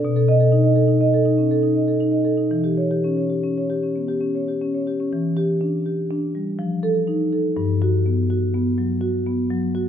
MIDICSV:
0, 0, Header, 1, 2, 480
1, 0, Start_track
1, 0, Key_signature, 1, "minor"
1, 0, Tempo, 486224
1, 44, Time_signature, 5, 2, 24, 8
1, 1965, Tempo, 519931
1, 4845, Tempo, 487013
1, 9552, End_track
2, 0, Start_track
2, 0, Title_t, "Marimba"
2, 0, Program_c, 0, 12
2, 45, Note_on_c, 0, 47, 80
2, 161, Note_on_c, 0, 69, 65
2, 280, Note_on_c, 0, 75, 84
2, 351, Note_off_c, 0, 69, 0
2, 397, Note_on_c, 0, 69, 59
2, 470, Note_off_c, 0, 75, 0
2, 515, Note_on_c, 0, 63, 64
2, 587, Note_off_c, 0, 69, 0
2, 630, Note_on_c, 0, 75, 65
2, 705, Note_off_c, 0, 63, 0
2, 746, Note_on_c, 0, 69, 60
2, 823, Note_off_c, 0, 75, 0
2, 867, Note_on_c, 0, 63, 52
2, 941, Note_off_c, 0, 69, 0
2, 994, Note_on_c, 0, 75, 67
2, 1063, Note_off_c, 0, 63, 0
2, 1126, Note_on_c, 0, 69, 65
2, 1187, Note_off_c, 0, 75, 0
2, 1240, Note_on_c, 0, 63, 61
2, 1313, Note_off_c, 0, 69, 0
2, 1363, Note_on_c, 0, 61, 44
2, 1430, Note_off_c, 0, 63, 0
2, 1480, Note_off_c, 0, 61, 0
2, 1491, Note_on_c, 0, 69, 64
2, 1610, Note_on_c, 0, 63, 53
2, 1678, Note_off_c, 0, 69, 0
2, 1727, Note_on_c, 0, 75, 50
2, 1799, Note_off_c, 0, 63, 0
2, 1854, Note_on_c, 0, 69, 47
2, 1920, Note_off_c, 0, 75, 0
2, 1977, Note_on_c, 0, 63, 57
2, 2041, Note_off_c, 0, 69, 0
2, 2082, Note_on_c, 0, 75, 47
2, 2159, Note_off_c, 0, 63, 0
2, 2202, Note_on_c, 0, 69, 52
2, 2272, Note_off_c, 0, 75, 0
2, 2319, Note_on_c, 0, 63, 49
2, 2394, Note_off_c, 0, 69, 0
2, 2406, Note_off_c, 0, 47, 0
2, 2442, Note_off_c, 0, 63, 0
2, 2445, Note_on_c, 0, 52, 61
2, 2564, Note_on_c, 0, 67, 55
2, 2688, Note_on_c, 0, 73, 63
2, 2761, Note_off_c, 0, 67, 0
2, 2815, Note_on_c, 0, 67, 56
2, 2883, Note_off_c, 0, 73, 0
2, 2936, Note_on_c, 0, 61, 57
2, 3007, Note_off_c, 0, 67, 0
2, 3051, Note_on_c, 0, 73, 49
2, 3128, Note_off_c, 0, 61, 0
2, 3172, Note_on_c, 0, 67, 47
2, 3245, Note_off_c, 0, 73, 0
2, 3299, Note_on_c, 0, 61, 52
2, 3365, Note_off_c, 0, 67, 0
2, 3428, Note_on_c, 0, 73, 58
2, 3488, Note_off_c, 0, 61, 0
2, 3542, Note_on_c, 0, 67, 50
2, 3611, Note_off_c, 0, 73, 0
2, 3664, Note_on_c, 0, 61, 45
2, 3727, Note_off_c, 0, 67, 0
2, 3780, Note_on_c, 0, 59, 39
2, 3847, Note_off_c, 0, 61, 0
2, 3893, Note_off_c, 0, 59, 0
2, 3897, Note_on_c, 0, 67, 58
2, 4011, Note_on_c, 0, 61, 49
2, 4083, Note_off_c, 0, 67, 0
2, 4142, Note_on_c, 0, 73, 46
2, 4201, Note_off_c, 0, 61, 0
2, 4266, Note_on_c, 0, 67, 44
2, 4327, Note_off_c, 0, 73, 0
2, 4388, Note_on_c, 0, 61, 55
2, 4450, Note_off_c, 0, 67, 0
2, 4505, Note_on_c, 0, 73, 47
2, 4572, Note_off_c, 0, 61, 0
2, 4624, Note_on_c, 0, 67, 49
2, 4691, Note_off_c, 0, 73, 0
2, 4744, Note_on_c, 0, 61, 48
2, 4807, Note_off_c, 0, 67, 0
2, 4811, Note_off_c, 0, 52, 0
2, 4853, Note_off_c, 0, 61, 0
2, 4862, Note_on_c, 0, 52, 70
2, 5098, Note_on_c, 0, 67, 69
2, 5337, Note_on_c, 0, 62, 58
2, 5483, Note_off_c, 0, 67, 0
2, 5582, Note_on_c, 0, 67, 51
2, 5721, Note_off_c, 0, 62, 0
2, 5827, Note_on_c, 0, 62, 65
2, 5960, Note_off_c, 0, 67, 0
2, 6067, Note_on_c, 0, 55, 52
2, 6202, Note_off_c, 0, 62, 0
2, 6259, Note_off_c, 0, 52, 0
2, 6298, Note_off_c, 0, 55, 0
2, 6302, Note_on_c, 0, 53, 70
2, 6541, Note_on_c, 0, 69, 78
2, 6781, Note_on_c, 0, 63, 57
2, 6920, Note_off_c, 0, 69, 0
2, 7029, Note_on_c, 0, 69, 58
2, 7163, Note_off_c, 0, 63, 0
2, 7231, Note_off_c, 0, 53, 0
2, 7263, Note_off_c, 0, 69, 0
2, 7265, Note_on_c, 0, 43, 80
2, 7514, Note_on_c, 0, 66, 75
2, 7752, Note_on_c, 0, 59, 53
2, 7888, Note_off_c, 0, 66, 0
2, 7992, Note_on_c, 0, 66, 59
2, 8125, Note_off_c, 0, 59, 0
2, 8230, Note_on_c, 0, 59, 64
2, 8364, Note_off_c, 0, 66, 0
2, 8462, Note_on_c, 0, 54, 59
2, 8602, Note_off_c, 0, 59, 0
2, 8689, Note_on_c, 0, 66, 68
2, 8837, Note_off_c, 0, 54, 0
2, 8938, Note_on_c, 0, 59, 64
2, 9070, Note_off_c, 0, 66, 0
2, 9178, Note_on_c, 0, 54, 72
2, 9316, Note_off_c, 0, 59, 0
2, 9416, Note_on_c, 0, 66, 62
2, 9552, Note_off_c, 0, 43, 0
2, 9552, Note_off_c, 0, 54, 0
2, 9552, Note_off_c, 0, 66, 0
2, 9552, End_track
0, 0, End_of_file